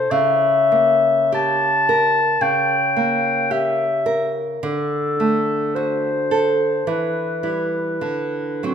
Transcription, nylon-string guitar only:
0.00 0.11 A4 soft
0.11 2.37 C#3 medium
0.72 1.67 A#3 soft
1.32 2.20 G4 soft
1.89 2.74 A#4 medium
2.41 4.58 C#3 medium
2.97 3.84 A#3 soft
3.51 4.40 G4 soft
4.06 4.62 A#4 soft
4.63 6.83 D3 medium
5.20 6.09 A3 soft
5.76 6.65 F#4 soft
6.31 6.87 A4 soft
6.87 7.99 E3 soft
7.43 7.98 G3 soft
7.43 7.98 E4 soft
8.01 8.74 D3 soft
8.63 8.74 F#3 soft
8.63 8.74 C4 soft

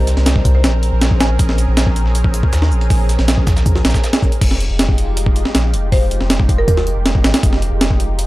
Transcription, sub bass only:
0.00 0.15 C2 medium
0.17 0.65 C2 loud
0.64 0.91 A#1 medium
0.92 1.38 A#1 medium
1.39 1.66 A#1 loud
1.68 2.42 A#1 loud
2.52 2.73 D#2 medium
2.71 3.17 A#1 medium
3.19 3.84 A#1 loud
3.85 3.93 A#1 medium
4.41 4.68 F1 loud
4.70 5.44 F1 loud
5.55 5.75 A#1 medium
5.73 6.19 F1 medium
6.21 6.95 F1 loud
6.96 7.24 F1 medium
7.24 7.33 G#1 medium
7.43 7.70 F1 loud
7.72 8.27 F1 loud

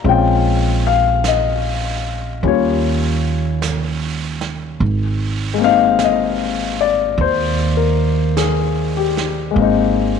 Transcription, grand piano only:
0.04 2.43 G#3 soft
0.04 2.43 C4 soft
0.04 2.42 C#4 soft
0.04 2.43 F4 soft
0.09 0.81 G5 medium
0.87 1.27 F5 medium
1.28 2.41 D#5 medium
2.43 4.81 G3 soft
2.43 4.81 A#3 soft
2.43 4.81 C#4 soft
2.43 4.82 F4 soft
2.48 4.39 C#5 medium
5.54 9.49 G#3 soft
5.58 9.52 A#3 soft
5.58 9.56 C4 soft
5.64 9.60 D#4 soft
5.64 6.03 F5 medium
6.04 6.76 D#5 medium
6.81 7.17 D5 medium
7.21 9.14 C5 medium
7.77 8.63 A#4 soft
8.37 9.32 G#4 soft
8.97 9.83 G4 soft
9.51 10.20 G#3 soft
9.51 10.20 A#3 soft
9.58 10.20 C4 soft
9.58 10.20 D#4 soft

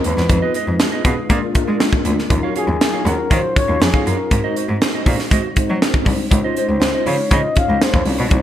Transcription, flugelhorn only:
0.05 0.55 B4 medium
2.57 3.10 G#4 medium
3.08 3.32 A#4 medium
3.33 3.59 C5 medium
3.57 3.84 C#5 loud
3.83 4.09 G#4 medium
4.08 4.57 A#4 medium
6.58 7.10 C5 medium
7.08 7.35 C#5 medium
7.34 7.60 D#5 medium
7.58 7.84 F5 loud
7.83 8.07 C5 medium

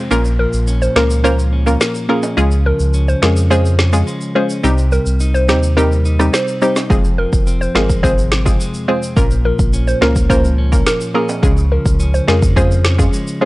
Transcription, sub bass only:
0.11 0.46 A#1 loud
0.54 0.89 A#1 medium
0.96 1.77 C#2 medium
2.37 2.73 C#2 loud
2.80 3.15 C#2 loud
3.22 4.03 F2 loud
4.64 4.99 C2 loud
5.06 5.50 C2 medium
5.49 6.30 D#2 medium
6.90 7.25 F1 loud
7.33 7.68 F1 medium
7.75 8.56 G#1 loud
9.17 9.52 A#1 loud
9.59 9.94 A#1 medium
10.01 10.82 C#2 medium
11.43 11.78 C#2 loud
11.86 12.21 C#2 medium
12.28 13.09 F2 loud

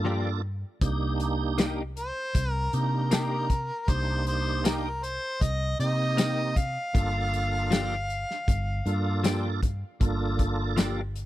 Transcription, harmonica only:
1.99 2.51 C5 medium
2.51 2.75 A#4 medium
2.75 3.12 A#4 medium
3.14 3.92 A#4 medium
3.90 4.27 C5 medium
4.28 4.67 C5 medium
4.66 5.05 A#4 medium
5.04 5.44 C5 medium
5.42 5.79 D#5 medium
5.80 6.59 D#5 loud
6.57 9.63 F5 loud

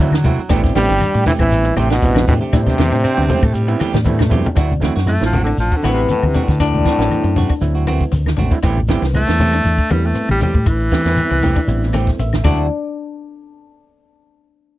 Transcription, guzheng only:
0.49 0.70 D4 loud
0.75 0.86 C4 medium
0.89 1.09 D4 medium
1.14 1.35 F#4 medium
1.65 1.86 E4 medium
1.90 2.11 D4 medium
2.16 2.37 D4 medium
2.53 2.74 D4 loud
2.78 2.89 C4 medium
2.92 3.13 D4 medium
3.17 3.38 F#4 medium
3.68 3.89 E4 medium
3.94 4.14 D4 medium
4.19 4.40 D4 medium
4.56 4.77 D4 loud
5.46 5.67 D4 medium
5.84 6.15 B3 medium
6.09 6.29 C4 medium
6.34 6.55 D4 medium
6.60 7.49 D4 loud
6.99 7.20 B3 medium
7.24 7.45 C4 medium
7.49 7.70 D4 medium
7.87 8.08 B3 medium
8.12 8.33 C4 medium
8.37 8.58 D4 medium
8.62 8.84 E4 loud
9.02 9.23 B3 medium
9.27 9.48 C4 medium
9.53 9.74 D4 medium
9.90 10.11 B3 medium
10.15 10.36 C4 medium
10.41 10.62 E4 medium
10.66 10.87 E4 loud
11.06 11.26 B3 medium
11.30 11.51 C4 medium
11.56 11.77 D4 medium
11.94 12.15 A3 medium
12.19 12.40 C4 medium
12.44 12.57 D4 medium

